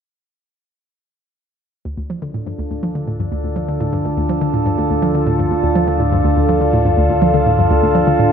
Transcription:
0, 0, Header, 1, 4, 480
1, 0, Start_track
1, 0, Key_signature, -1, "minor"
1, 0, Tempo, 487805
1, 1823, Time_signature, 4, 2, 24, 8
1, 8190, End_track
2, 0, Start_track
2, 0, Title_t, "Ambient pad"
2, 0, Program_c, 0, 92
2, 1827, Note_on_c, 0, 50, 71
2, 1901, Note_on_c, 0, 62, 81
2, 2009, Note_on_c, 0, 65, 75
2, 2180, Note_on_c, 0, 69, 77
2, 8190, Note_off_c, 0, 50, 0
2, 8190, Note_off_c, 0, 62, 0
2, 8190, Note_off_c, 0, 65, 0
2, 8190, Note_off_c, 0, 69, 0
2, 8190, End_track
3, 0, Start_track
3, 0, Title_t, "Synth arpeggio sound"
3, 0, Program_c, 1, 84
3, 1823, Note_on_c, 1, 38, 74
3, 1909, Note_off_c, 1, 38, 0
3, 1943, Note_on_c, 1, 38, 69
3, 2029, Note_off_c, 1, 38, 0
3, 2065, Note_on_c, 1, 53, 67
3, 2116, Note_off_c, 1, 53, 0
3, 2186, Note_on_c, 1, 50, 70
3, 2271, Note_off_c, 1, 50, 0
3, 2305, Note_on_c, 1, 45, 73
3, 2418, Note_off_c, 1, 45, 0
3, 2425, Note_on_c, 1, 43, 70
3, 2476, Note_off_c, 1, 43, 0
3, 2544, Note_on_c, 1, 38, 72
3, 2630, Note_off_c, 1, 38, 0
3, 2665, Note_on_c, 1, 38, 70
3, 2751, Note_off_c, 1, 38, 0
3, 2784, Note_on_c, 1, 53, 74
3, 2836, Note_off_c, 1, 53, 0
3, 2904, Note_on_c, 1, 50, 69
3, 2990, Note_off_c, 1, 50, 0
3, 3025, Note_on_c, 1, 45, 67
3, 3138, Note_off_c, 1, 45, 0
3, 3145, Note_on_c, 1, 43, 65
3, 3196, Note_off_c, 1, 43, 0
3, 3264, Note_on_c, 1, 38, 73
3, 3350, Note_off_c, 1, 38, 0
3, 3384, Note_on_c, 1, 38, 71
3, 3470, Note_off_c, 1, 38, 0
3, 3503, Note_on_c, 1, 53, 67
3, 3555, Note_off_c, 1, 53, 0
3, 3625, Note_on_c, 1, 50, 68
3, 3711, Note_off_c, 1, 50, 0
3, 3744, Note_on_c, 1, 45, 75
3, 3858, Note_off_c, 1, 45, 0
3, 3864, Note_on_c, 1, 43, 73
3, 3916, Note_off_c, 1, 43, 0
3, 3985, Note_on_c, 1, 38, 70
3, 4071, Note_off_c, 1, 38, 0
3, 4105, Note_on_c, 1, 38, 69
3, 4190, Note_off_c, 1, 38, 0
3, 4223, Note_on_c, 1, 53, 74
3, 4275, Note_off_c, 1, 53, 0
3, 4344, Note_on_c, 1, 50, 70
3, 4430, Note_off_c, 1, 50, 0
3, 4464, Note_on_c, 1, 45, 69
3, 4578, Note_off_c, 1, 45, 0
3, 4582, Note_on_c, 1, 43, 73
3, 4635, Note_off_c, 1, 43, 0
3, 4703, Note_on_c, 1, 38, 73
3, 4790, Note_off_c, 1, 38, 0
3, 4823, Note_on_c, 1, 38, 69
3, 4909, Note_off_c, 1, 38, 0
3, 4943, Note_on_c, 1, 53, 68
3, 4995, Note_off_c, 1, 53, 0
3, 5064, Note_on_c, 1, 50, 67
3, 5150, Note_off_c, 1, 50, 0
3, 5182, Note_on_c, 1, 45, 75
3, 5297, Note_off_c, 1, 45, 0
3, 5303, Note_on_c, 1, 43, 68
3, 5355, Note_off_c, 1, 43, 0
3, 5422, Note_on_c, 1, 38, 70
3, 5509, Note_off_c, 1, 38, 0
3, 5542, Note_on_c, 1, 38, 67
3, 5629, Note_off_c, 1, 38, 0
3, 5662, Note_on_c, 1, 53, 76
3, 5715, Note_off_c, 1, 53, 0
3, 5782, Note_on_c, 1, 50, 73
3, 5869, Note_off_c, 1, 50, 0
3, 5903, Note_on_c, 1, 45, 68
3, 6017, Note_off_c, 1, 45, 0
3, 6024, Note_on_c, 1, 43, 72
3, 6075, Note_off_c, 1, 43, 0
3, 6144, Note_on_c, 1, 38, 76
3, 6230, Note_off_c, 1, 38, 0
3, 6264, Note_on_c, 1, 38, 69
3, 6350, Note_off_c, 1, 38, 0
3, 6384, Note_on_c, 1, 53, 71
3, 6436, Note_off_c, 1, 53, 0
3, 6503, Note_on_c, 1, 50, 70
3, 6590, Note_off_c, 1, 50, 0
3, 6623, Note_on_c, 1, 45, 76
3, 6738, Note_off_c, 1, 45, 0
3, 6742, Note_on_c, 1, 43, 71
3, 6795, Note_off_c, 1, 43, 0
3, 6862, Note_on_c, 1, 38, 69
3, 6949, Note_off_c, 1, 38, 0
3, 6981, Note_on_c, 1, 38, 68
3, 7069, Note_off_c, 1, 38, 0
3, 7102, Note_on_c, 1, 53, 71
3, 7155, Note_off_c, 1, 53, 0
3, 7222, Note_on_c, 1, 50, 71
3, 7309, Note_off_c, 1, 50, 0
3, 7343, Note_on_c, 1, 45, 69
3, 7457, Note_off_c, 1, 45, 0
3, 7463, Note_on_c, 1, 43, 67
3, 7515, Note_off_c, 1, 43, 0
3, 7583, Note_on_c, 1, 38, 76
3, 7669, Note_off_c, 1, 38, 0
3, 7701, Note_on_c, 1, 38, 69
3, 7789, Note_off_c, 1, 38, 0
3, 7822, Note_on_c, 1, 53, 68
3, 7875, Note_off_c, 1, 53, 0
3, 7942, Note_on_c, 1, 50, 71
3, 8029, Note_off_c, 1, 50, 0
3, 8062, Note_on_c, 1, 45, 76
3, 8177, Note_off_c, 1, 45, 0
3, 8190, End_track
4, 0, Start_track
4, 0, Title_t, "Analog synth bass"
4, 0, Program_c, 2, 38
4, 1825, Note_on_c, 2, 38, 80
4, 8190, Note_off_c, 2, 38, 0
4, 8190, End_track
0, 0, End_of_file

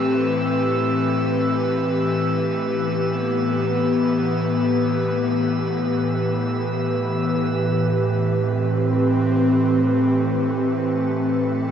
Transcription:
0, 0, Header, 1, 4, 480
1, 0, Start_track
1, 0, Key_signature, 0, "minor"
1, 0, Tempo, 500000
1, 11244, End_track
2, 0, Start_track
2, 0, Title_t, "Synth texture"
2, 0, Program_c, 0, 99
2, 0, Note_on_c, 0, 88, 69
2, 7235, Note_off_c, 0, 88, 0
2, 11244, End_track
3, 0, Start_track
3, 0, Title_t, "Synth drone"
3, 0, Program_c, 1, 95
3, 0, Note_on_c, 1, 57, 69
3, 0, Note_on_c, 1, 69, 68
3, 7201, Note_off_c, 1, 57, 0
3, 7213, Note_off_c, 1, 69, 0
3, 7213, Note_on_c, 1, 57, 77
3, 7224, Note_on_c, 1, 69, 78
3, 11244, Note_off_c, 1, 57, 0
3, 11244, Note_off_c, 1, 69, 0
3, 11244, End_track
4, 0, Start_track
4, 0, Title_t, "Analog synth pad"
4, 0, Program_c, 2, 89
4, 0, Note_on_c, 2, 45, 77
4, 0, Note_on_c, 2, 52, 78
4, 0, Note_on_c, 2, 60, 72
4, 0, Note_on_c, 2, 67, 60
4, 0, Note_on_c, 2, 71, 64
4, 2268, Note_off_c, 2, 45, 0
4, 2278, Note_off_c, 2, 60, 0
4, 2280, Note_on_c, 2, 45, 58
4, 2553, Note_on_c, 2, 59, 82
4, 7207, Note_off_c, 2, 59, 0
4, 7902, Note_on_c, 2, 60, 90
4, 11244, Note_off_c, 2, 45, 0
4, 11244, Note_off_c, 2, 52, 0
4, 11244, Note_off_c, 2, 60, 0
4, 11244, Note_off_c, 2, 67, 0
4, 11244, Note_off_c, 2, 71, 0
4, 11244, End_track
0, 0, End_of_file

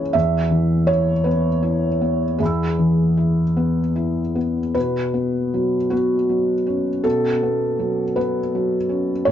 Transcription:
0, 0, Header, 1, 2, 480
1, 0, Start_track
1, 0, Tempo, 752823
1, 91, Time_signature, 6, 3, 24, 8
1, 1533, Tempo, 778210
1, 3933, Tempo, 740741
1, 5891, End_track
2, 0, Start_track
2, 0, Title_t, "Felt piano"
2, 0, Program_c, 0, 0
2, 0, Control_c, 0, 64, 127
2, 0, Note_on_c, 0, 37, 39
2, 0, Note_on_c, 0, 52, 32
2, 0, Note_on_c, 0, 61, 29
2, 0, Note_on_c, 0, 64, 37
2, 0, Note_on_c, 0, 68, 37
2, 0, Note_on_c, 0, 73, 55
2, 64, Note_off_c, 0, 37, 0
2, 84, Note_on_c, 0, 76, 65
2, 88, Note_off_c, 0, 61, 0
2, 89, Note_off_c, 0, 73, 0
2, 94, Note_on_c, 0, 40, 40
2, 102, Control_c, 0, 64, 0
2, 104, Note_off_c, 0, 52, 0
2, 105, Note_off_c, 0, 68, 0
2, 108, Note_off_c, 0, 64, 0
2, 228, Control_c, 0, 64, 127
2, 321, Note_on_c, 0, 52, 34
2, 554, Note_on_c, 0, 73, 67
2, 561, Note_on_c, 0, 64, 38
2, 562, Note_off_c, 0, 76, 0
2, 704, Note_off_c, 0, 52, 0
2, 790, Note_on_c, 0, 71, 45
2, 798, Note_off_c, 0, 73, 0
2, 799, Note_on_c, 0, 59, 31
2, 946, Note_off_c, 0, 64, 0
2, 1037, Note_on_c, 0, 64, 33
2, 1189, Note_off_c, 0, 59, 0
2, 1284, Note_on_c, 0, 59, 26
2, 1431, Note_off_c, 0, 64, 0
2, 1508, Note_off_c, 0, 40, 0
2, 1520, Note_on_c, 0, 68, 43
2, 1526, Note_off_c, 0, 71, 0
2, 1529, Note_on_c, 0, 40, 34
2, 1529, Note_on_c, 0, 76, 21
2, 1542, Control_c, 0, 64, 0
2, 1547, Note_on_c, 0, 83, 23
2, 1565, Note_on_c, 0, 88, 23
2, 1660, Control_c, 0, 64, 127
2, 1672, Note_off_c, 0, 59, 0
2, 1767, Note_on_c, 0, 52, 28
2, 2007, Note_on_c, 0, 64, 27
2, 2154, Note_off_c, 0, 52, 0
2, 2250, Note_on_c, 0, 59, 29
2, 2396, Note_off_c, 0, 64, 0
2, 2491, Note_on_c, 0, 64, 29
2, 2639, Note_off_c, 0, 59, 0
2, 2732, Note_off_c, 0, 68, 0
2, 2735, Note_on_c, 0, 59, 26
2, 2882, Note_off_c, 0, 64, 0
2, 2954, Note_off_c, 0, 40, 0
2, 2954, Note_off_c, 0, 76, 0
2, 2962, Note_off_c, 0, 83, 0
2, 2971, Note_off_c, 0, 88, 0
2, 2977, Note_on_c, 0, 71, 55
2, 2978, Note_off_c, 0, 59, 0
2, 2983, Note_on_c, 0, 47, 36
2, 2992, Control_c, 0, 64, 0
2, 3102, Control_c, 0, 64, 127
2, 3219, Note_on_c, 0, 59, 30
2, 3466, Note_on_c, 0, 54, 30
2, 3603, Note_off_c, 0, 59, 0
2, 3690, Note_on_c, 0, 66, 52
2, 3697, Note_off_c, 0, 71, 0
2, 3699, Note_on_c, 0, 59, 29
2, 3843, Note_off_c, 0, 54, 0
2, 3932, Note_on_c, 0, 54, 31
2, 4080, Note_off_c, 0, 59, 0
2, 4173, Note_on_c, 0, 61, 32
2, 4321, Note_off_c, 0, 54, 0
2, 4394, Note_off_c, 0, 47, 0
2, 4413, Note_on_c, 0, 69, 59
2, 4414, Note_off_c, 0, 66, 0
2, 4421, Note_on_c, 0, 47, 37
2, 4429, Control_c, 0, 64, 0
2, 4538, Control_c, 0, 64, 127
2, 4561, Note_off_c, 0, 61, 0
2, 4667, Note_on_c, 0, 59, 32
2, 4903, Note_on_c, 0, 54, 33
2, 5050, Note_off_c, 0, 59, 0
2, 5140, Note_off_c, 0, 69, 0
2, 5140, Note_on_c, 0, 71, 49
2, 5147, Note_on_c, 0, 59, 32
2, 5285, Note_off_c, 0, 54, 0
2, 5392, Note_on_c, 0, 54, 34
2, 5523, Note_off_c, 0, 59, 0
2, 5616, Note_on_c, 0, 61, 33
2, 5764, Note_off_c, 0, 54, 0
2, 5830, Note_off_c, 0, 47, 0
2, 5849, Note_on_c, 0, 73, 75
2, 5853, Note_off_c, 0, 71, 0
2, 5854, Note_off_c, 0, 61, 0
2, 5861, Note_on_c, 0, 45, 43
2, 5866, Control_c, 0, 64, 0
2, 5891, Note_off_c, 0, 45, 0
2, 5891, Note_off_c, 0, 73, 0
2, 5891, End_track
0, 0, End_of_file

